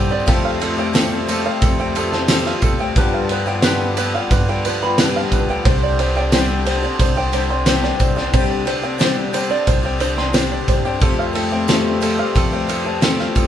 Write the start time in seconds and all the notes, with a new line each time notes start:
Already playing: G2 C3 D3 G3 C4 G4 C5 G5
0.09 C4 D4 G4 D5
0.26 F2 C3 F3 A3 C4 F4 G4 A4, kick, ride, tambourine
0.45 F5
0.60 F3 A3 C4 G4 A4, ride
0.77 A3 C4 G4 G5
0.93 F3 A3 C4 G4 A4, snare, ride, tambourine
1.27 F3 A3 C4 G4 A4, ride, tambourine
1.44 A3 C4 G4 F5
1.62 F2 A4, kick, ride, tambourine
1.79 A3 C4 G4 G5
1.95 F3 A3 C4 G4 A4, ride, tambourine
2.12 A3 C4 G4 A5, snare
2.28 F3 A3 C4 G4 A4, snare, ride, tambourine
2.45 F5, snare
2.62 F2 A4, kick, ride, tambourine
2.79 A3 C4 G4 G5
2.96 G2 D3 F3 G3 B3 G4 B4, kick, ride, tambourine
3.14 F5
3.29 F3 G3 B3 G4 B4, ride, tambourine
3.46 F3 G3 B3 G4 G5
3.62 G2 D3 F3 G3 B3 G4 B4, snare, ride, tambourine
3.97 F3 G3 B3 G4 B4, ride, tambourine
4.15 F3 G3 B3 G4 F5
4.31 G2 B4, kick, ride, tambourine
4.48 F3 G3 B3 G4 G5
4.65 F3 G3 B3 G4 B4, ride, tambourine
4.82 F3 G3 B3 G4 B5
4.98 G2 D3 F3 G3 B3 G4 B4, snare, ride, tambourine
5.16 F5
5.31 E2 B4, kick, ride, tambourine
5.49 D2 F3 G3 B3 G4 G5
5.64 C2 C3 G3 C4 D4 G4 C5, kick, ride, tambourine
5.83 D5
5.99 G3 C4 D4 G4 C5, ride
6.15 C4 D4 G4 G5
6.32 C3 G3 C4 D4 G4 C5, snare, ride, tambourine
6.65 G3 C4 D4 G4 C5, ride
6.82 C4 D4 G4 D5
6.99 C2 C5, kick, ride, tambourine
7.15 C4 D4 G4 G5
7.32 G3 C4 D4 G4 C5, ride, tambourine
7.49 C4 D4 G4 C6
7.66 C3 G3 C4 D4 G4 C5, snare, ride, tambourine
7.83 D5, snare
8.00 C2 C5, kick, ride, tambourine
8.16 C4 D4 G4 G5, snare
8.33 C3 G3 C4 D4 G4 C5, kick, ride, tambourine
8.50 D5
8.65 G3 C4 D4 G4 C5, ride
8.82 C4 D4 G4 G5
8.98 C3 G3 C4 D4 G4 C5, snare, ride, tambourine
9.33 G3 C4 D4 G4 C5, ride, tambourine
9.50 C4 D4 G4 D5
9.67 C2 C5, kick, ride, tambourine
9.83 C4 D4 G4 G5
9.99 G3 C4 D4 G4 C5, ride, tambourine
10.17 C4 D4 G4 C6, snare
10.33 C3 G3 C4 D4 G4 C5, snare, ride, tambourine
10.52 D5
10.68 G2 C5, kick, ride, tambourine
10.85 C4 D4 G4 G5
11.00 F2 C3 F3 G3 A3 C4 F4 G4 A4, kick, ride, tambourine
11.19 F5
11.33 F3 A3 C4 G4 A4, ride
11.50 A3 C4 G4 G5
11.68 F3 A3 C4 G4 A4, snare, ride, tambourine
12.01 F3 A3 C4 G4 A4, ride, tambourine
12.17 A3 C4 G4 F5
12.35 F2 A4, kick, ride, tambourine
12.51 A3 C4 G4 G5
12.67 F3 A3 C4 G4 A4, ride, tambourine
12.84 A3 C4 G4 A5
13.01 F3 A3 C4 G4 A4, snare, ride, tambourine
13.19 F5, snare
13.35 F2 A4, kick, ride, tambourine